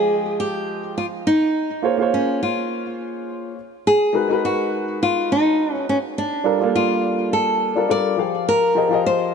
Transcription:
Already playing: F3 G#3 F4 G#4 D#5 G5
0.40 G4
0.98 F4
1.27 D#4
1.82 A#3 F4 G#4 C5 C#5
1.97 A#3 F4 G#4 C5
2.02 C#5
2.14 C#4
2.43 F4
3.87 G#4
4.13 G#3 D#4 F#4 A#4 B4
4.28 G#3 D#4 F#4 A#4
4.33 B4
4.45 F#4
5.03 F4
5.32 D#4
5.73 C#4
5.89 C#4
6.18 D4
6.44 G3 D4 F4 A4 A#4
6.58 G3 D4 F4 A4
6.63 A#3
6.75 F4
7.33 A4
7.75 G3 D4 F4 A4 A#4
7.88 G3 D4 F4 A4 A#4 D5
8.17 F3 F4 G4 G#4 F5
8.49 A#4
8.75 F3 F4 G4 G#4 D#5
8.89 F3 F4 G4 G#4
8.94 D#5
9.06 C5

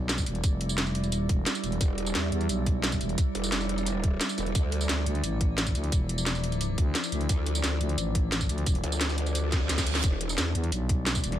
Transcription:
Already playing: B1 G3 E4 D5
0.09 snare, closed hi-hat, tambourine
0.18 kick, tambourine
0.26 E1, closed hi-hat, tambourine
0.35 closed hi-hat
0.44 F1, kick, closed hi-hat, tambourine
0.61 closed hi-hat
0.69 tambourine
0.78 snare, closed hi-hat, tambourine
0.86 tambourine
0.95 closed hi-hat
1.04 E1, closed hi-hat, tambourine
1.12 closed hi-hat, tambourine
1.29 E1, kick, closed hi-hat
1.46 snare, closed hi-hat, tambourine
1.55 closed hi-hat, tambourine
1.64 E1, closed hi-hat, tambourine
1.72 closed hi-hat
1.81 E1, kick, closed hi-hat, tambourine
1.98 closed hi-hat
2.06 tambourine
2.15 E2, snare, closed hi-hat, tambourine
2.32 E2, closed hi-hat
2.41 closed hi-hat
2.49 B1, closed hi-hat, tambourine
2.66 kick, closed hi-hat
2.84 snare, closed hi-hat, tambourine
2.92 kick, tambourine
3.01 E1, closed hi-hat, tambourine
3.09 closed hi-hat
3.18 kick, closed hi-hat, tambourine
3.35 F1, closed hi-hat
3.44 tambourine
3.52 snare, closed hi-hat, tambourine
3.61 tambourine
3.69 closed hi-hat
3.78 closed hi-hat, tambourine
3.86 closed hi-hat, tambourine
4.04 kick, closed hi-hat
4.21 snare, closed hi-hat, tambourine
4.29 closed hi-hat, tambourine
4.38 E1, closed hi-hat, tambourine
4.46 closed hi-hat
4.55 D2 F3, kick, closed hi-hat, tambourine
4.72 closed hi-hat
4.81 tambourine
4.89 D2, snare, closed hi-hat, tambourine
5.06 D2, closed hi-hat
5.15 closed hi-hat
5.24 A1, closed hi-hat, tambourine
5.41 kick, closed hi-hat
5.58 snare, closed hi-hat, tambourine
5.66 kick, tambourine
5.75 D2, closed hi-hat, tambourine
5.84 closed hi-hat
5.92 E1, kick, closed hi-hat, tambourine
6.09 closed hi-hat
6.18 tambourine
6.26 snare, closed hi-hat, tambourine
6.35 tambourine
6.44 closed hi-hat
6.52 closed hi-hat, tambourine
6.61 closed hi-hat, tambourine
6.78 D2, kick, closed hi-hat
6.95 snare, closed hi-hat, tambourine
7.04 closed hi-hat, tambourine
7.12 D2, closed hi-hat, tambourine
7.21 closed hi-hat
7.29 D2 D4, kick, closed hi-hat, tambourine
7.46 closed hi-hat
7.55 tambourine
7.64 D2, snare, closed hi-hat, tambourine
7.81 D2, closed hi-hat
7.89 closed hi-hat
7.98 A1, closed hi-hat, tambourine
8.15 kick, closed hi-hat
8.32 snare, closed hi-hat, tambourine
8.41 kick, tambourine
8.49 D2, closed hi-hat, tambourine
8.58 closed hi-hat
8.66 E1, kick, closed hi-hat, tambourine
8.75 closed hi-hat
8.84 D2, closed hi-hat
8.92 tambourine
9.01 snare, closed hi-hat, tambourine
9.09 snare, tambourine
9.18 closed hi-hat
9.26 closed hi-hat, tambourine
9.35 closed hi-hat, tambourine, reverse cymbal
9.52 kick, snare, closed hi-hat, tambourine
9.69 D2, snare, closed hi-hat, tambourine
9.78 kick, snare, closed hi-hat, tambourine
9.86 closed hi-hat, tambourine
9.95 snare, closed hi-hat
10.04 E1 G3 E4 D5, kick, closed hi-hat, tambourine
10.12 snare
10.21 closed hi-hat
10.29 tambourine
10.38 E2, snare, closed hi-hat, tambourine
10.55 E2, closed hi-hat
10.64 closed hi-hat
10.72 B1, closed hi-hat, tambourine
10.89 kick, closed hi-hat
11.06 snare, closed hi-hat, tambourine
11.15 kick, tambourine
11.24 E1, closed hi-hat, tambourine
11.32 snare, closed hi-hat

